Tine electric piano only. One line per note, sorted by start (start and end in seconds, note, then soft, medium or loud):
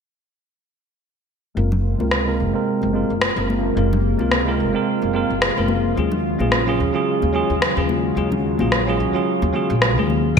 1.55 1.68 G#3 medium
1.55 1.69 C4 medium
1.55 1.69 F4 medium
1.55 1.70 A#4 medium
1.98 2.23 G#3 medium
1.98 2.23 C4 medium
1.98 2.24 F4 medium
1.98 2.24 A#4 medium
2.25 2.50 G#3 medium
2.25 2.50 C4 medium
2.25 2.51 F4 medium
2.25 2.51 A#4 medium
2.53 2.90 G#3 medium
2.53 2.91 C4 medium
2.53 2.91 F4 medium
2.53 2.92 A#4 medium
2.93 3.13 G#3 medium
2.93 3.13 C4 medium
2.93 3.14 F4 medium
2.93 3.14 A#4 medium
3.36 3.73 G#3 medium
3.36 3.74 C4 medium
3.36 3.74 F4 medium
3.36 3.75 A#4 medium
3.75 3.88 G#3 medium
3.75 3.89 C4 medium
3.75 3.90 F4 medium
3.75 3.90 A#4 medium
4.18 4.43 G#3 medium
4.18 4.43 C4 medium
4.18 4.44 F4 medium
4.18 4.44 A#4 medium
4.45 4.70 G#3 medium
4.45 4.71 C4 medium
4.45 4.71 F4 medium
4.45 4.72 A#4 medium
4.73 5.11 G#3 medium
4.73 5.11 C4 medium
4.73 5.12 F4 medium
4.73 5.12 A#4 medium
5.13 5.33 G#3 medium
5.13 5.33 C4 medium
5.13 5.34 F4 medium
5.13 5.34 A#4 medium
5.55 5.93 G#3 medium
5.55 5.94 C4 medium
5.55 5.94 F4 medium
5.55 5.95 A#4 medium
5.96 6.09 F#3 medium
5.96 6.09 C#4 medium
5.96 6.10 F4 medium
5.96 6.10 G#4 medium
6.39 6.63 F#3 medium
6.39 6.63 C#4 medium
6.39 6.64 F4 medium
6.39 6.64 G#4 medium
6.66 6.90 F#3 medium
6.66 6.91 C#4 medium
6.66 6.92 F4 medium
6.66 6.92 G#4 medium
6.93 7.31 F#3 medium
6.93 7.31 C#4 medium
6.93 7.32 F4 medium
6.93 7.32 G#4 medium
7.33 7.53 F#3 medium
7.33 7.53 C#4 medium
7.33 7.54 F4 medium
7.33 7.54 G#4 medium
7.75 8.13 F#3 medium
7.75 8.14 C#4 medium
7.75 8.14 F4 medium
7.75 8.15 G#4 medium
8.15 8.29 F#3 medium
8.15 8.29 C#4 medium
8.15 8.30 F4 medium
8.15 8.30 G#4 medium
8.58 8.83 F#3 medium
8.58 8.84 C#4 medium
8.58 8.84 F4 medium
8.58 8.85 G#4 medium
8.87 9.11 F#3 medium
8.87 9.11 C#4 medium
8.87 9.12 F4 medium
8.87 9.12 G#4 medium
9.13 9.51 F#3 medium
9.13 9.51 C#4 medium
9.13 9.52 F4 medium
9.13 9.52 G#4 medium
9.53 9.73 F#3 medium
9.53 9.73 C#4 medium
9.53 9.74 F4 medium
9.53 9.74 G#4 medium
9.96 10.34 F#3 medium
9.96 10.34 C#4 medium
9.96 10.35 F4 medium
9.96 10.35 G#4 medium
10.35 10.40 G#3 medium
10.35 10.40 C4 medium